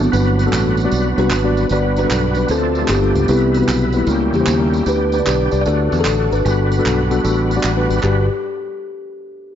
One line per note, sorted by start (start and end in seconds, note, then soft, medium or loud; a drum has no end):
0.00 1.55 D3 medium
0.00 1.54 F#3 medium
0.00 0.10 A3 medium
0.00 1.54 B3 medium
0.00 0.10 D4 medium
0.00 0.11 F#4 medium
0.12 0.46 G1 loud
0.12 0.74 G2 medium
0.12 1.67 F#3 medium
0.12 0.40 G3 medium
0.12 0.40 B3 medium
0.12 1.68 B3 medium
0.12 1.68 D4 medium
0.12 0.40 D4 medium
0.12 1.67 F#4 medium
0.12 0.40 F#4 medium
0.12 1.67 B4 medium
0.12 0.41 B4 medium
0.12 tambourine medium
0.39 tambourine medium
0.46 0.78 G3 medium
0.46 0.49 A#3 medium
0.46 0.78 D4 medium
0.46 0.78 F#4 medium
0.46 0.78 A4 loud
0.50 0.86 A1 medium
0.50 0.80 B3 medium
0.50 clap loud
0.50 tambourine loud
0.77 tambourine medium
0.84 1.07 G3 medium
0.84 1.07 B3 medium
0.84 1.07 D4 medium
0.84 1.07 F#4 medium
0.84 1.07 D5 loud
0.91 1.14 B1 loud
0.91 tambourine medium
1.17 1.29 C2 medium
1.17 1.34 G3 medium
1.17 1.34 B3 medium
1.17 1.34 D4 medium
1.17 1.68 D4 medium
1.17 1.34 F#4 medium
1.17 1.68 F#4 medium
1.17 1.34 B4 loud
1.17 1.68 B4 loud
1.17 tambourine medium
1.30 1.64 G#1 medium
1.30 clap loud
1.30 tambourine loud
1.43 1.65 G3 medium
1.43 1.65 B3 medium
1.43 1.65 D4 medium
1.43 1.65 F#4 medium
1.43 1.66 D5 loud
1.57 tambourine medium
1.69 2.04 G1 loud
1.69 2.33 G2 medium
1.69 1.98 G3 medium
1.69 2.49 G3 medium
1.69 1.98 B3 medium
1.69 2.49 B3 medium
1.69 1.98 D4 medium
1.69 2.49 D4 medium
1.69 1.98 F#4 medium
1.69 1.97 F#4 medium
1.69 2.49 F#4 medium
1.69 2.49 B4 medium
1.69 1.99 B4 medium
1.69 1.98 B4 medium
1.69 1.98 D5 loud
1.69 tambourine medium
1.96 2.47 D4 medium
1.96 2.47 F#4 medium
1.96 2.52 B4 loud
1.96 tambourine medium
2.03 2.26 G3 medium
2.03 2.26 B3 medium
2.03 2.26 D4 medium
2.03 2.26 F#4 medium
2.03 2.26 A4 medium
2.10 2.44 B1 medium
2.10 clap loud
2.10 tambourine loud
2.35 2.46 G3 medium
2.35 2.46 B3 medium
2.35 2.46 D4 medium
2.35 2.46 F#4 medium
2.35 2.46 B4 medium
2.35 tambourine medium
2.48 2.83 D2 medium
2.48 2.87 D3 medium
2.48 2.87 F3 medium
2.48 2.77 A3 medium
2.48 2.87 A3 medium
2.48 2.87 C4 medium
2.48 2.89 C4 medium
2.48 2.77 C4 medium
2.48 2.87 D4 medium
2.48 2.78 D4 medium
2.48 2.87 F4 medium
2.48 2.78 F4 medium
2.48 2.56 G#4 medium
2.48 2.87 A4 medium
2.48 2.78 C5 medium
2.48 tambourine medium
2.55 2.92 A4 medium
2.75 tambourine medium
2.82 2.89 A3 medium
2.82 2.89 C4 medium
2.82 2.89 D4 medium
2.82 2.90 F4 medium
2.82 2.90 G4 medium
2.88 3.11 G1 loud
2.88 3.26 G2 medium
2.88 3.28 F3 medium
2.88 3.28 A3 medium
2.88 3.27 B3 medium
2.88 3.26 B3 medium
2.88 3.28 D4 medium
2.88 3.26 D4 medium
2.88 2.95 F#4 medium
2.88 3.30 G4 medium
2.88 clap loud
2.88 tambourine loud
2.93 3.31 G4 medium
3.01 3.23 G3 medium
3.01 3.23 B3 medium
3.01 3.23 D4 medium
3.01 3.23 F4 medium
3.01 3.24 A4 medium
3.15 3.27 C#2 medium
3.15 tambourine medium
3.28 3.62 C2 loud
3.28 3.90 C3 medium
3.28 4.06 E3 medium
3.28 4.05 G3 medium
3.28 3.56 G3 medium
3.28 3.56 B3 medium
3.28 4.06 B3 medium
3.28 3.54 B3 medium
3.28 3.56 C4 medium
3.28 3.56 E4 medium
3.28 4.06 E4 medium
3.28 3.96 E4 medium
3.28 3.42 G4 loud
3.28 4.06 B4 medium
3.28 3.56 B4 medium
3.28 tambourine medium
3.54 4.05 B3 medium
3.54 3.97 F#4 loud
3.54 tambourine medium
3.61 3.84 G3 medium
3.61 3.84 B3 medium
3.61 3.84 C4 medium
3.61 3.84 E4 medium
3.61 3.85 B4 medium
3.68 4.02 B1 medium
3.68 clap loud
3.68 tambourine loud
3.92 4.04 G3 medium
3.92 4.70 G3 medium
3.92 4.33 A#3 medium
3.92 4.04 B3 medium
3.92 4.04 C4 medium
3.92 4.04 E4 medium
3.92 4.04 B4 medium
3.92 tambourine medium
3.97 4.33 E4 loud
4.06 4.29 C#2 loud
4.06 4.69 C#3 medium
4.06 4.85 G3 medium
4.06 4.35 G3 medium
4.06 4.84 A#3 medium
4.06 4.35 A#3 medium
4.06 4.85 C#4 medium
4.06 4.35 C#4 medium
4.06 4.85 E4 medium
4.06 4.35 E4 medium
4.06 4.14 F#4 medium
4.06 4.35 A#4 medium
4.06 tambourine medium
4.11 4.85 G4 medium
4.33 4.45 E2 medium
4.33 4.83 A#3 medium
4.33 4.83 E4 medium
4.33 4.84 G4 loud
4.33 tambourine medium
4.40 4.53 G3 medium
4.40 4.53 A#3 medium
4.40 4.54 C#4 medium
4.40 4.54 E4 medium
4.40 4.54 C5 medium
4.46 4.81 D#2 loud
4.46 clap loud
4.46 tambourine loud
4.59 4.81 G3 medium
4.59 4.81 A#3 medium
4.59 4.81 C#4 medium
4.59 4.81 E4 medium
4.59 4.81 A#4 medium
4.74 tambourine medium
4.85 5.20 D2 loud
4.85 5.48 D3 medium
4.85 5.63 B3 medium
4.85 5.64 D4 medium
4.85 5.14 D4 medium
4.85 5.25 D4 medium
4.85 5.64 G4 medium
4.85 5.14 G4 medium
4.85 5.25 G4 medium
4.85 5.14 B4 medium
4.85 5.13 B4 loud
4.85 tambourine medium
5.12 5.27 B4 loud
5.12 tambourine medium
5.19 5.42 D4 medium
5.19 5.42 G4 medium
5.19 5.42 D5 medium
5.26 5.49 B1 medium
5.26 5.63 D4 medium
5.26 5.63 G4 medium
5.26 5.61 B4 loud
5.26 clap loud
5.26 tambourine loud
5.51 5.64 C2 medium
5.51 5.62 D4 medium
5.51 5.62 G4 medium
5.51 5.62 D5 medium
5.51 tambourine medium
5.61 5.66 D5 loud
5.66 5.88 D2 loud
5.66 6.28 D3 medium
5.66 6.43 A3 medium
5.66 5.93 D4 medium
5.66 6.44 D4 medium
5.66 6.44 F#4 medium
5.66 5.94 F#4 medium
5.66 5.98 F#4 medium
5.66 5.99 A4 medium
5.66 5.94 A4 medium
5.66 5.97 D5 loud
5.66 tambourine medium
5.92 6.04 E2 medium
5.92 tambourine medium
5.98 6.31 D4 medium
5.98 6.12 D4 medium
5.98 6.12 F#4 medium
5.98 6.30 F#4 medium
5.98 6.12 A4 medium
5.98 6.33 A4 loud
6.05 6.28 A1 medium
6.05 clap loud
6.05 tambourine loud
6.18 6.40 D4 medium
6.18 6.40 F#4 medium
6.18 6.40 A4 medium
6.32 6.43 G#1 medium
6.32 7.60 D4 medium
6.32 7.60 F#4 medium
6.32 7.60 B4 medium
6.32 tambourine medium
6.45 6.79 G1 loud
6.45 7.07 G2 medium
6.45 8.00 G3 medium
6.45 6.73 G3 medium
6.45 6.73 B3 medium
6.45 8.01 B3 medium
6.45 8.00 D4 medium
6.45 6.73 D4 medium
6.45 8.00 F#4 medium
6.45 6.73 F#4 medium
6.45 8.00 B4 medium
6.45 6.73 B4 medium
6.45 tambourine medium
6.72 tambourine medium
6.78 7.01 G3 medium
6.78 7.01 B3 medium
6.78 7.01 D4 medium
6.78 7.01 F#4 medium
6.78 7.01 A4 loud
6.86 7.19 B1 medium
6.86 clap loud
6.86 tambourine loud
7.10 7.21 G3 medium
7.10 7.21 B3 medium
7.10 7.21 D4 medium
7.10 7.21 F#4 medium
7.10 7.21 A4 loud
7.10 tambourine medium
7.23 7.58 A1 loud
7.23 7.51 G3 medium
7.23 7.51 B3 medium
7.23 7.52 D4 medium
7.23 7.51 F#4 medium
7.23 7.52 A4 loud
7.23 tambourine medium
7.51 tambourine medium
7.56 7.70 G3 loud
7.56 7.70 B3 medium
7.56 7.70 D4 medium
7.56 7.70 F#4 medium
7.56 7.70 D5 loud
7.63 7.86 A1 loud
7.63 clap loud
7.63 tambourine loud
7.76 7.98 G3 medium
7.76 7.98 B3 medium
7.76 7.98 D4 medium
7.76 7.98 F#4 medium
7.76 7.98 B4 loud
7.90 8.01 G#1 medium
7.90 tambourine medium
8.01 8.28 G1 loud
8.01 8.27 G2 medium
8.01 8.26 G3 medium
8.01 8.28 G3 medium
8.01 8.26 D4 medium
8.01 8.27 D4 medium
8.01 8.27 F#4 medium
8.01 8.28 F#4 medium
8.01 8.28 G4 medium
8.01 8.27 B4 medium
8.01 8.28 B4 medium
8.01 clap medium